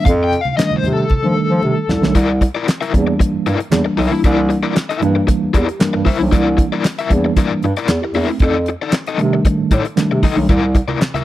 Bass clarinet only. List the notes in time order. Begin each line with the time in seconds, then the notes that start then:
0.06 F2
0.84 C3
1.25 F3
1.50 F3
1.63 C3
1.89 C2
2.04 B1
2.15 C2
2.94 E2
3.34 G2
3.46 G2
3.72 E2
3.99 B1
4.24 C2
5.02 G2
5.44 E2
5.54 E2
5.81 G2
5.95 G2
6.21 B1
6.33 C2
7.10 E2
7.50 G2
7.63 G2
7.89 E2
8.14 E2
8.40 F2
9.19 C3
9.59 A2
9.71 A2
9.97 C3
10.11 C3
10.37 B1
10.49 C2